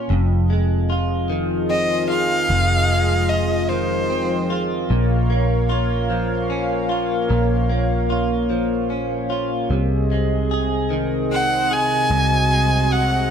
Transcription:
Already playing: C#4 F4
0.10 F1 F2 F3 F4 G#4 D#5
0.50 G#3
0.90 F4
1.30 D#3
1.70 C4 D#5
2.09 F4 F5
2.50 F1 F2
2.90 G#3
3.29 F4 D#5
3.69 D#3 C5
4.10 C4
4.50 F4
4.89 A#1 A#2 A#3 A#4 C#5 F5
5.30 A#3
5.69 F4
6.10 F3
6.50 C#4
6.89 F4
7.30 A#1 A#2
7.70 A#3
8.10 F4
8.50 F3
8.90 C#4
9.30 F4
9.70 C2 C3 C4 G#4 D#5
10.12 G#3
10.51 G#4
10.90 D#3
11.31 C4 F#5
11.71 G#4 G#5
12.10 C2 C3 F#4
12.51 G#3
12.91 G#4 F#5

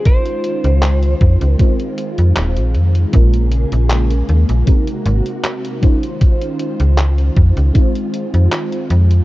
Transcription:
Already playing: D#3 G#3 C#4 D#4 F4 C5
0.06 C5, kick, closed hi-hat
0.26 closed hi-hat
0.44 closed hi-hat
0.64 C#2, closed hi-hat
0.83 clap, closed hi-hat
1.03 closed hi-hat
1.21 F2, kick, closed hi-hat
1.41 C#2, closed hi-hat
1.53 A#4
1.58 G#3 C4 D#4 F4 C5, kick, closed hi-hat
1.80 closed hi-hat
1.98 closed hi-hat
2.18 F2, closed hi-hat
2.36 D#1, clap, closed hi-hat
2.57 A#1, closed hi-hat
2.75 F2, closed hi-hat
2.95 closed hi-hat
3.12 A#1 C#3 G#3 A#3 C#4 F4 G#4 A#4, kick, closed hi-hat
3.34 closed hi-hat
3.51 closed hi-hat
3.72 A#1, closed hi-hat
3.90 clap, closed hi-hat
4.10 closed hi-hat
4.29 D#2, closed hi-hat
4.49 A#1, closed hi-hat
4.66 C3 G#3 C4 D#4 F#4 A#4, kick, closed hi-hat
4.87 closed hi-hat
5.06 G#1, closed hi-hat
5.26 closed hi-hat
5.44 clap, closed hi-hat
5.65 closed hi-hat
5.81 D#3 G#3 C#4 D#4 F4 C5, kick, closed hi-hat
6.03 closed hi-hat
6.21 kick, closed hi-hat
6.41 closed hi-hat
6.59 closed hi-hat
6.80 C#2, closed hi-hat
6.98 clap, closed hi-hat
7.18 closed hi-hat
7.36 F2, kick, closed hi-hat
7.57 C#2, closed hi-hat
7.73 D#3 G#3 C4 D#4 F4 C5, kick, closed hi-hat
7.95 closed hi-hat
8.14 closed hi-hat
8.34 F2, closed hi-hat
8.52 clap, closed hi-hat
8.72 closed hi-hat
8.90 F2, closed hi-hat
9.11 closed hi-hat

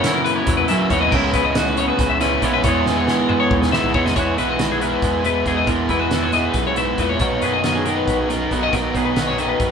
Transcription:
Already playing: F#2 C#3 E3 F#3 A#3 B3 C#4 E4 C#5
0.04 E4, snare, closed hi-hat
0.14 A#4
0.25 B4, closed hi-hat
0.36 C#5
0.47 E2 F#3, kick, closed hi-hat
0.57 B4
0.68 F#2 C#3 E3 F#3 A#3 C#4 E4 E5, closed hi-hat
0.90 D#2 F#2 C#3 E3 A#3 B3 E4 C#5, kick, closed hi-hat
1.01 D#5
1.12 C#2 C#3 E3 G#3 B3 C#4 E4 A#4, kick, crash
1.16 E4
1.33 B3 B4, kick, snare, closed hi-hat
1.45 D#5
1.55 F#4, snare, closed hi-hat
1.66 B4
1.77 B3 C#5, closed hi-hat
1.88 B4
1.99 C#2 E3, kick, snare, closed hi-hat
2.10 E5
2.21 C#3 G#3 C#4 E4 B4, snare, closed hi-hat
2.42 B1 C#3 G#3 B3 C#4 E4 C#5, kick, closed hi-hat
2.54 B4
2.64 E2 E3 G#3 B3 E4 C#5, kick, closed hi-hat
2.68 G#4
2.86 E2 G#3 B4, snare
2.96 C#5
3.08 G#4, snare
3.18 A#4
3.29 G#3 B4, mid tom
3.40 C#5
3.51 D#2 E3, kick, mid tom
3.61 B4, snare
3.72 E3 G#3 B3 D#4 E4 E5, snare
3.84 floor tom
3.94 E2 E3 G#3 B3 E4 C#5, kick
4.06 D#5, snare
4.15 E2 E3 G#3 B3 E4 F#4 C#5, kick, closed hi-hat
4.37 B1 G#3 B3 E4 F#4 B4, closed hi-hat
4.50 D#5
4.59 E3 G#3 B3 E4, snare, closed hi-hat
4.72 G#4
4.81 E3 G#3 B3 E4 A#4, closed hi-hat
4.93 B4
5.02 E2 G#3, kick, snare, closed hi-hat
5.15 G#4
5.24 B2 G#3 B3 E4 B4, closed hi-hat
5.46 E2 E3 G#3 B3 D#4 E4 G#4, kick, closed hi-hat
5.57 D#5
5.66 E2 E3 G#3 B3 E4 A#4, kick, closed hi-hat
5.89 E2 G#3 B3 E4 B4, kick, closed hi-hat
5.99 F#4 B4
6.11 E3 G#3 B3 E4, snare, closed hi-hat
6.23 C#5
6.32 E3 G#3 B3 E4 D#5, snare, closed hi-hat
6.44 B4
6.54 B1 F#2, kick, snare, closed hi-hat
6.67 C#5
6.76 G#2 G#3 B3 E4 E5, closed hi-hat
6.98 E2 A#2 E3 G#3 B3 E4 B4, kick, closed hi-hat
7.09 C#5
7.20 B1 B2 D#3 F#3 A#3 B3 D#4 C#5, kick, closed hi-hat
7.42 F#2 F#3 B3 D#4 G#4 B4, closed hi-hat
7.53 D#5
7.64 D#3 F#3 B3 C#4 D#4, snare, closed hi-hat
7.76 G#4
7.86 D#3 F#3 B3 D#4 A#4, closed hi-hat
7.97 B4
8.08 B1, kick, closed hi-hat
8.19 G#4
8.29 F#2 F#3 B3 D#4 A#4, closed hi-hat
8.51 B1 B2 D#3 F#3 B3 D#4 F#4, kick, closed hi-hat
8.63 C#4 D#5
8.73 B1 B2 D#3 F#3 B3 D#4 A#4, kick, closed hi-hat
8.95 B1 F#3 B3 D#4 G#4 B4, kick, closed hi-hat
9.05 B4
9.16 D#3 F#3 B3 D#4, snare, closed hi-hat
9.27 C#4 C#5
9.38 D#3 F#3 B3 D#4 D#5, closed hi-hat
9.49 B4
9.60 F#2, kick, closed hi-hat

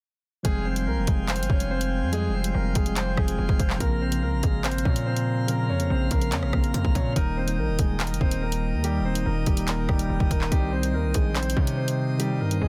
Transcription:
0.43 F1 F3 G3 G#3 C4 G#4 F5 G5 G#5 C6, kick, closed hi-hat
0.65 C4 C5
0.74 F3 G3 G#3 C4, closed hi-hat
0.87 C2 A#3 A#4
0.97 F1
1.07 F1 G#3 G#4, kick, closed hi-hat
1.29 C4 C5, clap, closed hi-hat
1.36 G1, closed hi-hat
1.43 closed hi-hat
1.49 F1 C#4 C#5, kick
1.60 closed hi-hat
1.71 C4 C5
1.81 closed hi-hat
2.02 F2
2.11 F3 G3 G#3 C4 G#4, closed hi-hat
2.28 F1
2.34 C4 C5
2.43 F3 G3 G#3 C4, closed hi-hat
2.54 F1 A#3 A#4
2.75 F1 G#3 G#4, kick, closed hi-hat
2.84 F3 G3 G#3 C4, closed hi-hat
2.96 C4 C5, clap, closed hi-hat
3.16 F1 F3 G#3 C4 G#4, kick, cross-stick
3.28 closed hi-hat
3.38 F1
3.49 F1, kick
3.60 F1 C4 C5, kick, closed hi-hat
3.70 clap
3.78 A#1 C#3 F3 A#3 C4 A#4 F5 A#5, kick, closed hi-hat
4.01 C4 C5
4.10 C#3 F3 A#3 C4, closed hi-hat
4.22 C#2 A#3 A#4
4.33 A#1
4.43 G#1 G#3 G#4, kick, closed hi-hat
4.64 C4 C5, clap, closed hi-hat
4.71 closed hi-hat
4.78 closed hi-hat
4.85 A#2 C#4 C#5, kick
4.96 closed hi-hat
5.06 C4 C5
5.17 closed hi-hat
5.47 C#3 F3 A#3 C4 A#4, closed hi-hat
5.69 F2 C#4 C#5
5.78 C#3 F3 A#3 C4, closed hi-hat
5.90 A#1 C4 C5
6.11 A#1 A#3 A#4, kick, closed hi-hat
6.20 C#3 F3 A#3 C4, closed hi-hat
6.32 F2 C#4 C#5, clap, closed hi-hat
6.43 A#1, cross-stick
6.51 A#1 C#3 F3 A#3 C4 A#4, kick, cross-stick
6.64 closed hi-hat
6.74 F2, closed hi-hat
6.85 A#1, kick
6.95 A#2 C#4 C#5, kick, closed hi-hat
7.14 D#1 D#3 G3 A#3 D#4 A#4 D#5 G5 D#6, kick, closed hi-hat
7.37 C4 C5
7.45 D#3 G3 A#3 D#4, closed hi-hat
7.58 A#1 A#3 A#4
7.68 D#1
7.79 D#1 G#3 G#4, kick, closed hi-hat
8.00 A#3 A#4, clap, closed hi-hat
8.07 F1, closed hi-hat
8.14 closed hi-hat
8.21 D#1 C4 C5, kick
8.31 closed hi-hat
8.42 A#3 A#4
8.52 closed hi-hat
8.73 D#2
8.82 D#3 G3 A#3 D#4 G4, closed hi-hat
9.00 D#1
9.05 C4 C5
9.14 D#3 G3 A#3 D#4, closed hi-hat
9.26 D#1 A#3 A#4
9.46 D#1 G3 G4, kick, closed hi-hat
9.55 D#3 G3 A#3 D#4, closed hi-hat
9.68 A#3 A#4, clap, closed hi-hat
9.87 D#1 D#3 G3 A#3 D#4 G4, kick, cross-stick
9.99 closed hi-hat
10.10 D#1
10.20 D#1, kick
10.30 D#1 A#3 A#4, kick, closed hi-hat
10.41 clap
10.50 C2 D#3 G3 C4 D#4 G4 C5, kick, closed hi-hat
10.73 C4 C5
10.82 D#3 G3 C4 D#4, closed hi-hat
10.94 D#2 A#3 A#4
11.04 C2
11.14 A#1 G#3 G#4, kick, closed hi-hat
11.35 C4 C5, clap, closed hi-hat
11.43 closed hi-hat
11.50 closed hi-hat
11.56 C3 C#4 C#5, kick
11.67 closed hi-hat
11.77 C4 C5
11.88 closed hi-hat
12.18 D#3 G3 C4 D#4 G4, closed hi-hat
12.40 G2 A#3 A#4
12.49 D#3 G3 C4 D#4, closed hi-hat
12.61 C2 G#3 G#4

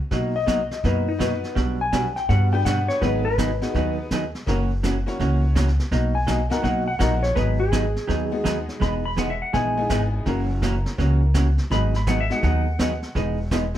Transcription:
0.11 B1 B2 F#3 A#3 D#4 F#4, brush sweep, kick, snare
0.36 D#5
0.47 B2 F#3 A#3 D#4 F#4, kick, snare, hi-hat pedal
0.71 snare
0.84 F#2 B2 F#3 A#3 D#4 F#4 B4, brush sweep, kick, snare
1.08 D#4
1.18 B2 F#3 A#3 B3 D#4 F#4 B4, kick, snare, hi-hat pedal
1.44 snare
1.55 B1 B2 G3 B3 D4 F#4, brush sweep, kick, snare
1.81 G#5
1.92 B2 G3 B3 D4 F#4, kick, snare, hi-hat pedal
2.16 G5, snare
2.29 G2 B2 G3 B3 D4 F#4 F#5, brush sweep, kick, snare
2.52 B3 D4 F#4 G4 B4 G5
2.65 B2 G3 B3 D4 F#4 F#5, kick, snare, hi-hat pedal
2.88 C#5, snare
3.01 G#1 D#3 F#3 B3 D#4 F#4 G#4 B4, brush sweep, kick, snare
3.25 B4
3.38 D#3 F#3 B3 D#4 G#4, kick, snare, hi-hat pedal
3.62 B3 D#4 F#4 G#4 B4, snare
3.75 D#2 D#3 F#3 B3 D#4 G#4, brush sweep, kick, snare
4.11 D#3 F#3 B3 D#4 G#4, kick, snare, hi-hat pedal
4.35 snare
4.46 F#1 C#3 E3 A#3 C#4 E4 F#4 A#4, brush sweep, kick, snare
4.83 C#3 E3 A#3 C#4 F#4, kick, snare, hi-hat pedal
5.06 A#3 C#4 E4 F#4 C#5, snare
5.19 C#2 C#3 E3 A#3 C#4 F#4, brush sweep, kick, snare
5.55 C#3 E3 A#3 C#4 F#4, kick, snare, hi-hat pedal
5.68 snare
5.79 snare
5.91 B1 B2 F#3 A#3 D#4 F#4, brush sweep, kick, snare
6.15 G#5
6.27 B2 F#3 A#3 D#4 F#4, kick, snare, hi-hat pedal
6.50 A#3 B3 D#4 F#4 A#4 F#5, snare
6.63 B1 B2 F#3 A#3 D#4 F#4 F#5, brush sweep, kick, snare
6.88 F#5
6.99 A#1 B2 F#3 A#3 B3 D#4 F#4 A#4 F#5, kick, snare, hi-hat pedal
7.23 C#5, snare
7.35 G#1 D#3 F#3 B3 D#4 G#4 B4, brush sweep, kick, snare
7.60 G#4
7.72 D#3 F#3 B3 D#4 G#4, kick, snare, hi-hat pedal
7.96 snare
8.07 D#2 D#3 F#3 B3 D#4 G#4, brush sweep, kick, snare
8.32 G#3 B3 D#4 F#4 G#4
8.44 D#3 F#3 B3 D#4 G#4, kick, snare, hi-hat pedal
8.69 snare
8.80 E1 E3 G#3 B3 D#4 G#4 B5, brush sweep, kick, snare
9.05 B5
9.17 E3 G#3 B3 D#4 G#4 F#5, kick, snare, hi-hat pedal
9.30 E5
9.42 F#5
9.53 A#1 E3 G#3 B3 D#4 G#4 G#5, brush sweep, kick, snare
9.77 G#3 B3 D#4 E4 G#4
9.90 G#1 E3 G#3 B3 D#4 G#4, kick, snare, hi-hat pedal
10.26 F#1 C#3 E3 A#3 C#4 E4 F#4 A#4, brush sweep, kick, snare
10.62 C#3 E3 A#3 C#4 F#4, kick, snare, hi-hat pedal
10.86 snare
10.98 C#2 C#3 E3 A#3 C#4 F#4, brush sweep, kick, snare
11.34 C#3 E3 A#3 C#4 F#4, kick, snare, hi-hat pedal
11.58 snare
11.70 G#1 D#3 F#3 B3 D#4 G#4 B5, brush sweep, kick, snare
11.94 B5, snare
12.07 D#3 F#3 B3 D#4 G#4 F#5, kick, snare, hi-hat pedal
12.21 E5
12.30 G#3 B3 D#4 F#4 G#4 F#5, snare
12.43 D#2 D#3 F#3 B3 D#4 G#4 F#5, brush sweep, kick, snare
12.79 D#3 F#3 B3 D#4 G#4, kick, snare, hi-hat pedal
13.02 snare
13.15 E1 E3 G#3 B3 D#4 G#4, brush sweep, kick, snare
13.51 E3 G#3 B3 D#4 G#4, kick, snare, hi-hat pedal
13.74 G#3, snare

